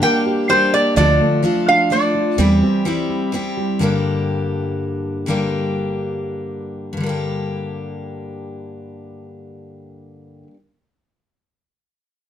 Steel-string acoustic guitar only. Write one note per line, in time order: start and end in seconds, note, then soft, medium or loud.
0.02 0.48 G3 medium
0.02 0.49 A#3 medium
0.02 0.50 D4 medium
0.02 0.51 G4 medium
0.49 0.96 G3 medium
0.49 0.97 A#3 medium
0.49 0.96 D4 medium
0.49 0.98 G4 medium
0.96 1.44 D3 medium
0.96 1.41 F3 medium
0.96 1.42 D4 medium
0.96 1.43 F4 medium
0.96 1.44 A4 medium
1.43 1.89 F3 medium
1.43 1.90 D4 medium
1.43 1.91 F4 medium
1.43 1.92 A4 medium
1.90 2.38 F3 medium
1.90 2.38 D4 medium
1.90 2.38 F4 medium
1.90 2.39 A4 medium
2.38 2.85 E3 medium
2.38 2.84 G3 medium
2.38 2.85 C4 medium
2.38 2.86 E4 medium
2.38 2.86 G4 medium
2.85 3.31 G3 medium
2.85 3.32 C4 medium
2.85 3.33 E4 medium
2.85 3.34 G4 medium
3.32 3.80 G3 medium
3.32 3.80 C4 medium
3.32 3.81 E4 medium
3.32 3.81 G4 medium
3.79 5.25 G2 medium
3.79 5.26 D3 medium
3.79 5.28 G3 medium
3.79 5.28 A#3 medium
3.79 5.29 D4 medium
3.83 5.30 G4 medium
5.26 6.92 G2 medium
5.26 6.96 D3 medium
5.26 6.98 G3 medium
5.26 6.99 A#3 medium
5.26 6.99 D4 medium
5.30 6.99 G4 medium
6.93 10.43 G2 medium
6.97 10.47 D3 medium
6.97 10.50 G3 medium
7.04 10.54 A#3 medium
7.04 10.56 D4 medium
7.09 10.59 G4 medium